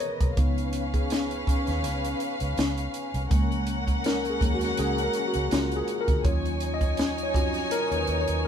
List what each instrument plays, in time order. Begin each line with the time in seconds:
Already playing: string section B3 A#4 D#5, tine electric piano G#4 A#4 B4, vibraphone C#5
0.00 tine electric piano C#5, closed hi-hat
0.21 fingered electric bass C2, kick, closed hi-hat
0.37 fingered electric bass C#2, tine electric piano F3 B3 D#4, string section C#4 B4 F5, kick, closed hi-hat
0.58 closed hi-hat
0.73 closed hi-hat
0.94 tine electric piano G#4, kick, closed hi-hat
1.10 snare, closed hi-hat
1.31 closed hi-hat
1.47 muted fingered electric bass stroke, kick, closed hi-hat
1.67 fingered electric bass D#2, snare, closed hi-hat
1.84 fingered electric bass C#2, snare, closed hi-hat
2.05 closed hi-hat
2.20 closed hi-hat
2.40 fingered electric bass C#2, closed hi-hat
2.58 fingered electric bass C#2, snare, closed hi-hat
2.77 closed hi-hat
2.94 vibraphone G#5, closed hi-hat
3.14 fingered electric bass C2, closed hi-hat
3.20 vibraphone C#6
3.30 fingered electric bass C#2, tine electric piano F3 G#3 A#3, string section C#4 A#4 F#5, kick, closed hi-hat
3.52 closed hi-hat
3.67 closed hi-hat
3.88 kick, closed hi-hat
4.04 tine electric piano A#4, snare, closed hi-hat
4.25 closed hi-hat
4.30 tine electric piano G#4
4.41 fingered electric bass D#2, tine electric piano F3 G#3 A#3, kick, closed hi-hat
4.55 tine electric piano F#4
4.61 snare, closed hi-hat
4.77 fingered electric bass C#2, tine electric piano G#4, snare, closed hi-hat
4.98 closed hi-hat
5.04 tine electric piano A#4
5.13 closed hi-hat
5.28 tine electric piano F#4
5.34 fingered electric bass C#2, closed hi-hat
5.51 fingered electric bass C#2, tine electric piano F4, snare, closed hi-hat
5.72 closed hi-hat
5.76 tine electric piano G#4
5.88 closed hi-hat
6.01 tine electric piano A#4
6.08 fingered electric bass D2, kick, closed hi-hat
6.24 fingered electric bass D#2, tine electric piano F#3 C#4 F4 C#5, string section D#4 C#5 G#5, kick, closed hi-hat
6.45 closed hi-hat
6.60 closed hi-hat
6.74 tine electric piano D#5
6.81 kick, closed hi-hat
6.97 snare, closed hi-hat
7.18 closed hi-hat
7.23 tine electric piano C#5
7.34 fingered electric bass F2, tine electric piano C#4 F4 F#4, kick, closed hi-hat
7.54 snare, closed hi-hat
7.71 tine electric piano A#4, vibraphone A#5, snare, closed hi-hat
7.91 fingered electric bass D#2, closed hi-hat
7.96 tine electric piano B4, vibraphone C#6
8.07 fingered electric bass D#2, closed hi-hat
8.20 tine electric piano C#5
8.28 fingered electric bass D#2, closed hi-hat